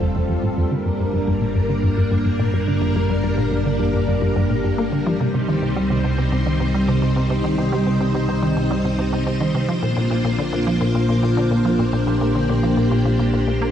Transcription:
Already playing: analog synth bass F1, string machine G3 C4 F4 A4
0.01 synth arpeggio sound F2
0.15 synth arpeggio sound F2
0.29 synth arpeggio sound F2
0.43 synth arpeggio sound A2
0.58 synth arpeggio sound F2
0.71 analog synth bass G1, synth arpeggio sound D3, string machine A#3 D4 A#4
0.86 synth arpeggio sound G2
1.00 synth arpeggio sound G2
1.13 synth arpeggio sound G2
1.27 synth arpeggio sound G2
1.42 synth arpeggio sound A#2
1.55 synth arpeggio sound G2
1.69 synth arpeggio sound D3
1.84 synth arpeggio sound G2
1.98 synth arpeggio sound G2
2.12 synth arpeggio sound G2
2.26 synth arpeggio sound G2
2.40 synth arpeggio sound A#2
2.54 synth arpeggio sound G2
2.68 synth arpeggio sound D3
2.82 synth arpeggio sound G2
2.96 synth arpeggio sound G2
3.10 synth arpeggio sound G2
3.24 synth arpeggio sound G2
3.38 synth arpeggio sound A#2
3.52 synth arpeggio sound G2
3.66 synth arpeggio sound D3
3.80 synth arpeggio sound G2
3.94 synth arpeggio sound G2
4.08 synth arpeggio sound G2
4.22 synth arpeggio sound G2
4.36 synth arpeggio sound G2
4.50 synth arpeggio sound A#2
4.64 synth arpeggio sound G2
4.78 synth arpeggio sound A#3
4.92 synth arpeggio sound D3
5.06 synth arpeggio sound F3
5.20 analog synth bass C2, synth arpeggio sound C3, string machine C4 D#4 C5
5.34 synth arpeggio sound C3
5.48 synth arpeggio sound D#3
5.63 synth arpeggio sound C3
5.76 synth arpeggio sound G3
5.90 synth arpeggio sound C3
6.04 synth arpeggio sound C3
6.18 synth arpeggio sound C3
6.32 synth arpeggio sound C3
6.46 synth arpeggio sound D#3
6.60 synth arpeggio sound C3
6.74 synth arpeggio sound G3
6.88 synth arpeggio sound C3
7.02 synth arpeggio sound C3
7.16 synth arpeggio sound C3
7.30 synth arpeggio sound C3
7.44 synth arpeggio sound D#3
7.58 synth arpeggio sound C3
7.72 synth arpeggio sound G3
7.87 synth arpeggio sound C3
8.01 synth arpeggio sound C3
8.15 synth arpeggio sound C3
8.29 synth arpeggio sound C3
8.43 synth arpeggio sound D#3
8.57 synth arpeggio sound C3
8.71 synth arpeggio sound G3
8.85 synth arpeggio sound C3
8.99 synth arpeggio sound C3
9.13 synth arpeggio sound C3
9.27 synth arpeggio sound C3
9.41 synth arpeggio sound D#3
9.55 synth arpeggio sound C3
9.69 analog synth bass A#1, synth arpeggio sound F3, string machine A#3 D4 F4
9.83 synth arpeggio sound A#2
9.97 synth arpeggio sound A#2
10.11 synth arpeggio sound A#2
10.25 synth arpeggio sound A#2
10.39 synth arpeggio sound D3
10.53 synth arpeggio sound A#2
10.67 synth arpeggio sound F3
10.81 synth arpeggio sound A#2
10.95 synth arpeggio sound A#2
11.09 synth arpeggio sound A#2
11.23 synth arpeggio sound A#2
11.37 synth arpeggio sound D3
11.51 synth arpeggio sound A#2
11.65 synth arpeggio sound F3
11.79 synth arpeggio sound A#2
11.93 synth arpeggio sound A#2, string machine G4
12.07 synth arpeggio sound A#2
12.21 synth arpeggio sound A#2
12.35 synth arpeggio sound D3
12.49 synth arpeggio sound A#2
12.63 synth arpeggio sound F3
12.77 synth arpeggio sound A#2
12.91 synth arpeggio sound A#2
13.05 synth arpeggio sound A#2
13.20 synth arpeggio sound A#2
13.34 synth arpeggio sound A#2
13.47 synth arpeggio sound A#2
13.62 synth arpeggio sound A#3

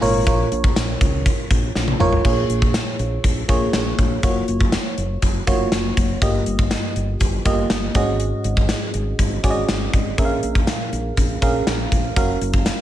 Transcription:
Already playing: fm electric piano A#2 A#4 C#5
0.00 fingered electric bass G#1, fm electric piano A#2 F4 A#4 C#5, open hi-hat
0.26 fingered electric bass A#1, fm electric piano F4 A#4 C#5, kick, closed hi-hat
0.52 fingered electric bass A#1, closed hi-hat
0.64 kick
0.76 fingered electric bass A#1, snare, closed hi-hat, tambourine
1.01 fingered electric bass C#2, kick, closed hi-hat
1.26 kick, closed hi-hat
1.51 fingered electric bass A#1, kick, closed hi-hat
1.75 fingered electric bass A#1, snare
1.88 high tom
2.00 fingered electric bass G#1, fm electric piano F4 A#4 C#5, mid tom
2.12 floor tom
2.25 fingered electric bass A#1, fm electric piano A#2 A#3 F4 G#4 C#5, kick, crash
2.50 fingered electric bass A#1, closed hi-hat
2.62 kick
2.74 snare, closed hi-hat
2.99 fingered electric bass A#1, closed hi-hat
3.24 fingered electric bass A#1, kick, closed hi-hat
3.48 fingered electric bass A#1, fm electric piano A#3 F4 G#4 C#5, kick, closed hi-hat
3.73 fingered electric bass A#1, snare, closed hi-hat
3.99 fingered electric bass A#1, kick, closed hi-hat
4.23 fingered electric bass F#1, fm electric piano A#3 F4 F#4 C#5, kick, closed hi-hat
4.48 fingered electric bass F#1, closed hi-hat
4.61 kick
4.72 snare, closed hi-hat
4.98 fingered electric bass F#1, closed hi-hat
5.22 fingered electric bass F#1, kick, closed hi-hat
5.47 fingered electric bass F#1, fm electric piano A#3 F4 F#4 C#5, kick, closed hi-hat
5.72 fingered electric bass F#1, snare, closed hi-hat
5.97 fingered electric bass F#1, kick, closed hi-hat
6.21 fingered electric bass G1, fm electric piano G2 A#3 F4 G4 D#5, kick, closed hi-hat
6.46 fingered electric bass G1, closed hi-hat
6.59 kick
6.71 snare, closed hi-hat
6.96 fingered electric bass G1, closed hi-hat
7.20 fingered electric bass G1, kick, closed hi-hat
7.45 fingered electric bass G1, fm electric piano A#3 F4 G4 D#5, kick, closed hi-hat
7.70 fingered electric bass G1, snare, closed hi-hat
7.95 fingered electric bass G#1, fm electric piano G#2 C#4 F#4 G#4 D#5, kick, closed hi-hat
8.20 closed hi-hat
8.44 fingered electric bass G#1, closed hi-hat
8.57 kick
8.69 snare, closed hi-hat
8.94 fingered electric bass G#1, closed hi-hat
9.19 fingered electric bass G#1, kick, closed hi-hat
9.43 fingered electric bass G#1, fm electric piano C#4 F#4 G#4 D5, kick, closed hi-hat
9.51 fm electric piano D#5
9.69 fingered electric bass G#1, snare, closed hi-hat
9.93 fingered electric bass G#1, kick, closed hi-hat
10.18 fingered electric bass A#1, fm electric piano A#2 C#4 G#4 A#4 E5, kick, closed hi-hat
10.25 fm electric piano F5
10.43 fingered electric bass A#1, closed hi-hat
10.55 kick
10.67 snare, closed hi-hat
10.93 fingered electric bass A#1, closed hi-hat
11.17 fingered electric bass A#1, kick, closed hi-hat
11.42 fingered electric bass A#1, fm electric piano C#4 G#4 A#4 F5, kick, closed hi-hat
11.67 fingered electric bass A#1, snare, closed hi-hat
11.92 fingered electric bass A#1, kick, closed hi-hat
12.16 fingered electric bass F#1, fm electric piano C#4 F#4 A#4 F5, kick, closed hi-hat
12.41 fingered electric bass F#1, closed hi-hat
12.54 kick
12.66 snare, closed hi-hat

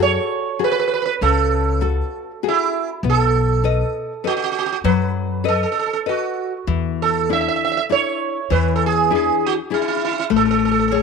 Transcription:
Already playing: upright bass F#2
0.00 nylon-string guitar F#4 G#4 A4, sitar C#5
0.59 nylon-string guitar F#4 G#4 A4
0.64 sitar B4
0.72 sitar B4
0.80 sitar B4
0.88 sitar B4
0.94 sitar B4
1.02 sitar B4
1.21 upright bass C#2, nylon-string guitar C#3, sitar A4
1.81 nylon-string guitar F#4 A4
2.43 nylon-string guitar F#4 G#4 A4
2.48 sitar E4
3.03 upright bass B1, nylon-string guitar B3
3.10 sitar A4
3.64 nylon-string guitar A4 B4 D#5
4.24 sitar F#4, nylon-string guitar A4 B4 D#5
4.37 sitar F#4
4.44 sitar F#4
4.52 sitar F#4
4.59 sitar F#4
4.66 sitar F#4
4.72 sitar F#4
4.84 upright bass F#2, nylon-string guitar F#3, sitar B4
5.44 nylon-string guitar A4 B4 D#5
5.48 sitar A4
5.55 sitar A4
5.63 sitar A4
5.72 sitar A4
5.79 sitar A4
5.86 sitar A4
5.93 sitar A4
6.06 sitar F#4, nylon-string guitar A4 B4 D#5
6.67 upright bass E2, nylon-string guitar E3
7.02 sitar A4
7.29 nylon-string guitar D4 E4 A4, sitar E5
7.41 sitar E5
7.48 sitar E5
7.56 sitar E5
7.65 sitar E5
7.72 sitar E5
7.77 sitar E5
7.89 nylon-string guitar D4 E4 A4, sitar C#5
8.50 upright bass E2, nylon-string guitar E3, sitar B4
8.76 sitar A4
8.86 sitar G#4
9.10 nylon-string guitar D4 E4 G#4
9.15 sitar G#4
9.46 sitar F#4
9.70 nylon-string guitar D4 E4 G#4, sitar E4
9.82 sitar E4
9.88 sitar E4
9.97 sitar E4
10.05 sitar E4
10.11 sitar E4
10.19 sitar E4
10.30 upright bass A1, nylon-string guitar A3
10.36 sitar A4
10.45 sitar A4
10.51 sitar A4
10.59 sitar A4
10.65 sitar A4
10.71 sitar A4
10.79 sitar A4
10.88 nylon-string guitar G#4 A4, sitar A4
10.92 sitar A4, nylon-string guitar C#5

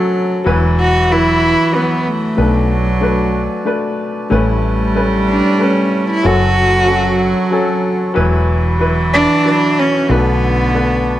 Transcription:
Already playing: upright piano F#1 F#2 F#3 C#4 A4, cello F#3, harmonium F#4 A4 C#5 A5
0.44 fretless electric bass E1, upright piano E2 F#3 E4 B4, cello E3, harmonium B4 E5 B5
0.80 cello F#4
1.10 upright piano F#3 E4 B4, cello E4
1.72 upright piano F#3 E4 B4, cello B3
2.07 cello A3
2.37 upright piano B1 B2 A3 D4 B4, fretless electric bass B1, cello F#3, harmonium D5 A5
3.01 upright piano A3 D4 B4
3.65 upright piano A3 D4 B4
4.30 upright piano A1 A2 A3 C#4 B4, fretless electric bass A1, cello G3, harmonium E4 C#5 A5
4.95 upright piano A3 C#4 B4
5.29 cello D4
5.59 upright piano A3 C#4 B4, cello C#4
6.10 cello E4
6.23 upright piano F#1 F#2 F#3 C#4 A4, fretless electric bass F#1, cello F#3 F#4, harmonium F#4 A4
6.86 upright piano F#3 C#4 A4
7.51 upright piano F#3 C#4 A4
8.14 fretless electric bass E1, upright piano E2 F#3 E4 B4, cello E3, harmonium B4 E5 B5
8.80 upright piano F#3 E4 B4
9.13 cello D4
9.45 upright piano F#3 E4 B4
9.79 cello C#4
10.08 fretless electric bass B1, upright piano B1 B2 A3 D4 B4, cello D3 B3, harmonium D5 A5
10.74 upright piano A3 D4 B4

